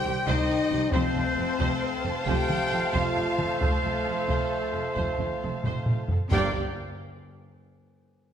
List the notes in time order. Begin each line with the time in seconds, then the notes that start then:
Already playing: D#3 G3 C4 G4 C5 G5
0.05 C2 G4
0.27 C2 D#4 C5 D#5, taiko
0.49 C2 D#4
0.71 C2 G4, taiko mid
0.91 F1 F2 F3 A3 C4 A4 C5 A5, taiko
0.95 F5
1.15 F1 F2 F4
1.37 F1 F2 A4
1.59 F1 F2 C5 F5, taiko
2.05 F1 F2 A4
2.25 F1 F2 G4 C5 G5, taiko
2.49 F1 F2 F4, taiko mid
2.71 F1 F2 A4
2.93 F1 F2 F4 C5 F5, taiko
3.16 F1 F2 F4
3.38 F1 F2 A4, taiko mid
3.61 F1 F2 A3 A4 C5, taiko
3.84 F1 F2 F4
4.06 F1 F2 A4
4.28 F1 F2 C5, taiko
4.74 F1 F2 A4
4.96 F1 F2 C5, taiko
5.19 F1 F2 F4, taiko mid
5.43 F1 F2 A4
5.64 F1 F2 C5, taiko low-mid
5.86 F1 F2 F4, taiko low-mid
6.08 F1 F2 A4, taiko low
6.31 G1 G2 F3 A#3 D4 G4 A#4 D5 F5 G5, taiko